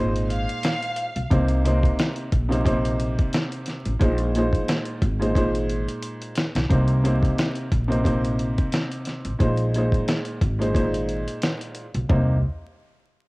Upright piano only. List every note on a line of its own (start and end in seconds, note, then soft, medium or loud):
0.00 1.05 A#2 loud
0.00 1.05 G#3 medium
0.00 1.06 D#4 medium
0.00 1.06 C5 loud
1.30 1.62 C3 loud
1.30 1.62 A#3 medium
1.30 1.63 D#4 medium
1.30 1.63 C5 loud
1.65 2.27 C3 medium
1.65 2.28 A#3 medium
1.65 2.28 D#4 medium
1.65 2.28 C5 loud
2.49 2.63 C3 medium
2.49 2.64 A#3 medium
2.49 2.65 D#4 medium
2.49 2.65 C5 loud
2.65 3.90 C3 loud
2.65 3.91 A#3 medium
2.65 3.91 D#4 loud
2.65 3.92 C5 loud
3.99 4.31 A#2 loud
3.99 4.32 G#3 medium
3.99 4.32 D#4 medium
3.99 4.32 C5 loud
4.36 4.98 A#2 medium
4.36 4.98 G#3 medium
4.36 4.99 D#4 medium
4.36 4.99 C5 loud
5.19 5.33 A#2 medium
5.19 5.34 G#3 medium
5.19 5.35 D#4 medium
5.19 5.35 C5 medium
5.35 6.44 A#2 loud
5.35 6.45 G#3 medium
5.35 6.45 D#4 medium
5.35 6.46 C5 loud
6.69 7.01 C3 medium
6.69 7.02 A#3 medium
6.69 7.02 D#4 medium
6.69 7.02 C5 loud
7.04 7.66 C3 medium
7.04 7.67 A#3 medium
7.04 7.67 D#4 medium
7.04 7.68 C5 loud
7.88 8.02 C3 medium
7.88 8.03 A#3 medium
7.88 8.04 D#4 medium
7.88 8.05 C5 medium
8.04 9.30 C3 loud
8.04 9.30 A#3 medium
8.04 9.31 D#4 medium
8.04 9.31 C5 loud
9.39 9.71 A#2 medium
9.39 9.71 G#3 medium
9.39 9.71 D#4 medium
9.39 9.72 C5 loud
9.75 10.37 A#2 medium
9.75 10.38 G#3 medium
9.75 10.38 D#4 medium
9.75 10.38 C5 loud
10.59 10.72 A#2 medium
10.59 10.73 G#3 medium
10.59 10.74 D#4 medium
10.59 10.75 C5 loud
10.74 11.84 A#2 loud
10.74 11.84 G#3 medium
10.74 11.84 D#4 medium
10.74 11.85 C5 loud
12.09 12.35 C3 medium
12.09 12.35 A#3 medium
12.09 12.35 D#4 medium
12.09 12.36 C5 medium